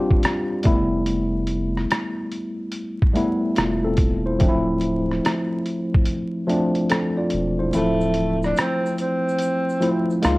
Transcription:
Already playing: tine electric piano G3 C4 D4 F4 G4
0.11 kick
0.23 cross-stick, closed hi-hat
0.63 sub bass F1, tine electric piano G3 A3 B3 E4, kick, closed hi-hat
1.06 closed hi-hat
1.47 closed hi-hat
1.77 cross-stick
1.91 cross-stick, closed hi-hat
2.32 closed hi-hat
2.72 closed hi-hat
3.02 kick
3.13 tine electric piano G3 A3 B3 E4, closed hi-hat
3.56 sub bass E1, tine electric piano A3 F4, cross-stick, closed hi-hat
3.84 tine electric piano C4 A4
3.97 sub bass E1, kick, closed hi-hat
4.26 tine electric piano E4 C5
4.39 sub bass D1, tine electric piano F3 A3 C4 D4, kick, closed hi-hat
4.48 tine electric piano E4
4.81 closed hi-hat
5.11 cross-stick
5.25 cross-stick, closed hi-hat
5.65 closed hi-hat
5.94 kick
6.05 closed hi-hat
6.47 tine electric piano F3 A3 C4 D4, closed hi-hat
6.75 closed hi-hat
6.90 tine electric piano C4 A4, cross-stick, closed hi-hat
7.17 tine electric piano F4 D5
7.30 sub bass E1, closed hi-hat
7.59 tine electric piano E4 C5
7.72 sub bass D1, tine electric piano E3 A3 C4 E4, closed hi-hat, shaker
7.76 tine electric piano F3, tenor saxophone A3
8.01 shaker
8.14 closed hi-hat
8.43 tenor saxophone D4, cross-stick, shaker
8.57 tenor saxophone C4, cross-stick, closed hi-hat, shaker
8.86 shaker
8.98 tenor saxophone C4, closed hi-hat, shaker
9.29 shaker
9.38 closed hi-hat, shaker
9.69 shaker
9.80 tine electric piano F3 A3 C4 E4, closed hi-hat, shaker
10.11 shaker
10.22 sub bass C#2, tine electric piano G#3 A#3 D#4 F4, cross-stick, closed hi-hat, shaker

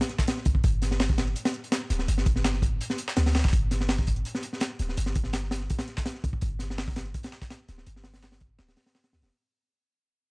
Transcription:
0.01 snare, closed hi-hat
0.09 snare, closed hi-hat
0.18 kick, snare, closed hi-hat
0.28 snare, closed hi-hat
0.37 snare
0.45 808-style bass C2, kick, closed hi-hat
0.55 kick
0.64 808-style bass G1, kick, closed hi-hat
0.82 snare, closed hi-hat
0.91 snare
1.00 snare, open hi-hat
1.09 kick, closed hi-hat
1.18 snare, closed hi-hat
1.27 closed hi-hat
1.36 closed hi-hat
1.45 snare, closed hi-hat
1.54 closed hi-hat
1.64 closed hi-hat
1.72 snare, closed hi-hat
1.90 808-style bass D1, snare, closed hi-hat
1.99 snare
2.08 808-style bass G1, closed hi-hat
2.18 snare
2.26 kick, closed hi-hat
2.36 snare
2.44 snare, closed hi-hat
2.54 snare
2.62 kick, closed hi-hat
2.81 closed hi-hat
2.90 snare
2.98 closed hi-hat
3.08 snare
3.16 808-style bass D2, snare, closed hi-hat, open hi-hat
3.26 snare, open hi-hat
3.34 snare, open hi-hat
3.39 snare, open hi-hat
3.44 808-style bass D1, kick, snare, open hi-hat
3.48 snare, open hi-hat
3.53 808-style bass G1, kick, closed hi-hat
3.71 snare, closed hi-hat
3.81 snare
3.88 snare, open hi-hat
3.98 kick, closed hi-hat
4.07 kick, closed hi-hat
4.16 closed hi-hat
4.25 closed hi-hat
4.35 snare
4.43 closed hi-hat
4.53 snare
4.60 snare, closed hi-hat
4.79 808-style bass D1, snare, closed hi-hat
4.89 snare
4.97 808-style bass G1, closed hi-hat
5.06 snare
5.15 kick, closed hi-hat
5.24 snare
5.33 snare, closed hi-hat
5.44 snare
5.51 snare, closed hi-hat
5.60 snare
5.70 kick, closed hi-hat
5.78 snare, closed hi-hat
5.88 snare, closed hi-hat
5.97 kick, snare, closed hi-hat
6.06 snare, closed hi-hat
6.15 snare
6.24 808-style bass C2, kick, closed hi-hat
6.33 kick
6.41 808-style bass G1, kick, closed hi-hat
6.59 snare, closed hi-hat
6.70 snare
6.78 snare, open hi-hat
6.88 kick
6.96 snare, closed hi-hat
7.05 snare, closed hi-hat
7.14 kick, closed hi-hat
7.23 snare, closed hi-hat
7.32 snare, open hi-hat
7.42 kick, snare, closed hi-hat, open hi-hat
7.50 snare, closed hi-hat, open hi-hat
7.68 808-style bass D1, snare, closed hi-hat
7.78 snare
7.87 808-style bass G1, closed hi-hat
7.96 snare
8.04 snare, closed hi-hat, open hi-hat
8.14 snare, open hi-hat
8.23 snare, closed hi-hat, open hi-hat
8.32 snare, open hi-hat
8.40 kick, closed hi-hat
8.59 808-style bass D1, snare, open hi-hat
8.68 snare, open hi-hat
8.77 snare, closed hi-hat, open hi-hat
8.86 snare, open hi-hat
8.95 snare, open hi-hat
9.04 snare, closed hi-hat, open hi-hat
9.13 808-style bass D2, snare, open hi-hat
9.22 808-style bass F1, snare, closed hi-hat, open hi-hat
9.26 snare, open hi-hat

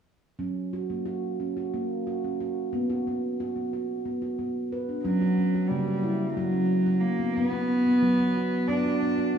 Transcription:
0.39 handpan F#3 C#4
0.73 handpan F#4
0.90 handpan A#3
1.06 handpan F#4
1.40 handpan C#4
1.57 handpan F#4
1.74 handpan A#3
2.07 handpan F#4
2.24 handpan C#4
2.40 handpan F#4
2.73 handpan B3
2.90 handpan F#4
3.07 handpan B3
3.40 handpan F#4
3.56 handpan B3
3.73 handpan F#4
4.05 handpan B3
4.22 handpan F#4
4.39 handpan B3
4.72 handpan B4
4.89 handpan D4
5.04 cello F#3, handpan F#3 C#4
5.21 handpan F#4
5.38 handpan C#4
5.54 handpan F#4
5.68 handpan C#3 A#3, cello G3
5.88 handpan F#4
6.03 handpan E4
6.34 cello F#3, handpan F#3 F#4
6.53 handpan C#4
6.86 handpan F#4
7.00 cello A#3
7.19 handpan B3
7.34 cello A#3, handpan B3
7.45 cello B3
7.52 handpan F#4
7.86 handpan B3
8.02 handpan F#3 F#4
8.19 handpan B3
8.37 handpan F#4
8.68 handpan B3, cello D4
8.85 handpan F#4
9.02 handpan B3
9.18 handpan F#4
9.34 handpan C#4

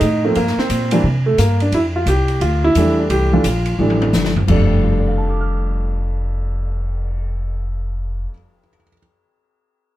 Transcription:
Already playing: grand piano D#4
0.01 upright bass A2, hi-hat pedal, ride
0.24 grand piano F3 A3 A#3 C4
0.35 upright bass G2, grand piano A#3, ride
0.47 snare
0.57 grand piano C4, muted upright bass stroke, snare
0.69 upright bass A#2, hi-hat pedal, ride
0.91 grand piano E3 G3 A#3 D4, ride
1.04 upright bass C3
1.26 grand piano A3
1.38 upright bass G2, grand piano A#3, hi-hat pedal, ride
1.60 grand piano D4, ride
1.72 upright bass F2, grand piano E4, ride
1.96 grand piano F4
2.06 upright bass C2, grand piano G4, hi-hat pedal, ride
2.28 ride
2.41 upright bass D2, grand piano F4, ride
2.64 grand piano E4
2.75 upright bass E2, grand piano E3 G3 A3 D4, hi-hat pedal, ride
3.00 grand piano D4
3.10 upright bass C2, grand piano G4, ride
3.33 grand piano E3 G3 A3 D4 F4
3.44 upright bass A#1, hi-hat pedal, ride
3.66 ride
3.79 upright bass A1, grand piano E3 G3 A3 D4, mid tom
3.90 high tom
4.02 high tom
4.13 upright bass G1, snare, hi-hat pedal
4.25 snare
4.36 floor tom
4.48 upright bass F1, grand piano F2 F3 G3 A3 D4, kick, crash
4.70 cymbal swell
4.83 grand piano F4
4.91 grand piano A4
4.99 grand piano D5
5.08 grand piano F5
5.18 grand piano A5
5.29 grand piano D6
5.41 grand piano F6

